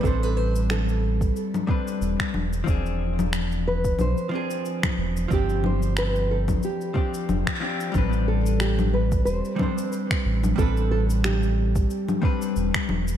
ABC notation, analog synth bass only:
X:1
M:4/4
L:1/8
Q:"Swing 16ths" 1/4=91
K:Am
V:1 name="Analog synth bass" clef=bass
A,,,4 z2 E,,, E,,, | E,,,4 B,,, z2 E,,, | G,,,4 z2 F,,, z | A,,,4 E,,, z2 A,,, |
A,,,4 z2 E,,, E,,, |]